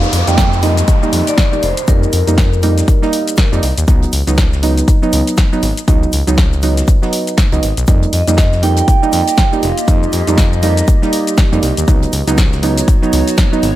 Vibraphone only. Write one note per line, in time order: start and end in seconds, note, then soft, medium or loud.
0.00 0.25 F5 loud
0.27 0.60 G5 loud
0.63 1.29 D#5 loud
1.28 1.64 D5 loud
1.63 1.89 C5 loud
1.88 3.59 A#4 medium
8.13 8.64 D#5 medium
8.63 9.09 G5 loud
9.13 9.64 G5 loud
9.63 9.89 F5 loud
9.88 10.84 D#5 medium